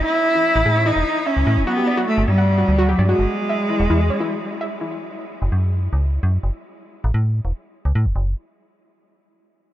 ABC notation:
X:1
M:4/4
L:1/16
Q:1/4=148
K:Alyd
V:1 name="Synth pluck"
z e z E z E G c E z3 e z E z | F =G =d F z3 f z F z F G d F z | z2 e z E z E G c E z3 e z E | z16 |
z16 | z16 |]
V:2 name="Cello"
E8 D4 C4 | B,4 A,2 =G,6 F,2 ^G,2- | G,12- G,2 z2 | z16 |
z16 | z16 |]
V:3 name="FM bass" clef=bass
z4 z A,,, A,,3 E,,, z3 C,, A,, E,,, | z4 z =G,,, =G,,4 =D,,3 G,, z G,,, | z4 z E,,, E,,2 z8 | z4 z F,,, F,,4 C,,3 F,, z F,,, |
z4 z A,,, A,,3 E,,, z3 C,, A,, E,,, | F,,,2 z12 z2 |]